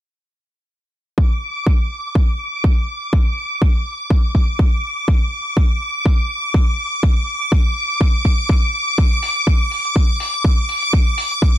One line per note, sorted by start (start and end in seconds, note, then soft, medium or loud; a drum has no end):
1.18 11.58 D6 medium
1.18 kick loud
1.67 kick loud
2.15 kick loud
2.64 kick loud
3.13 kick loud
3.62 kick loud
4.10 kick loud
4.35 kick medium
4.59 kick loud
5.08 kick loud
5.57 kick loud
6.06 kick loud
6.54 kick loud
7.03 kick loud
7.52 kick loud
8.01 kick loud
8.25 kick medium
8.49 kick loud
8.98 kick loud
8.98 closed hi-hat soft
9.12 closed hi-hat soft
9.23 open hi-hat loud
9.36 closed hi-hat soft
9.47 kick loud
9.47 closed hi-hat soft
9.61 closed hi-hat soft
9.71 open hi-hat medium
9.85 closed hi-hat soft
9.96 kick loud
9.96 closed hi-hat soft
10.09 closed hi-hat soft
10.20 open hi-hat loud
10.34 closed hi-hat soft
10.45 kick loud
10.45 closed hi-hat soft
10.58 closed hi-hat soft
10.69 open hi-hat medium
10.82 closed hi-hat soft
10.93 kick loud
10.93 closed hi-hat soft
11.07 closed hi-hat soft
11.18 open hi-hat loud
11.31 closed hi-hat soft
11.42 kick loud
11.42 closed hi-hat soft